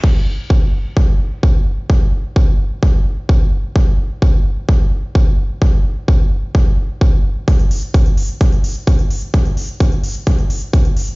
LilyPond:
\new DrumStaff \with { instrumentName = "Drums" } \drummode { \time 4/4 \tempo 4 = 129 <cymc bd>4 bd4 bd4 bd4 | bd4 bd4 bd4 bd4 | bd4 bd4 bd4 bd4 | bd4 bd4 bd4 bd4 |
<hh bd>16 hh16 hho16 hh16 <hh bd>16 hh16 hho16 hh16 <hh bd>16 hh16 hho16 hh16 <hh bd>16 hh16 hho16 hh16 | <hh bd>16 hh16 hho16 hh16 <hh bd>16 hh16 hho16 hh16 <hh bd>16 hh16 hho16 hh16 <hh bd>16 hh16 hho16 hh16 | }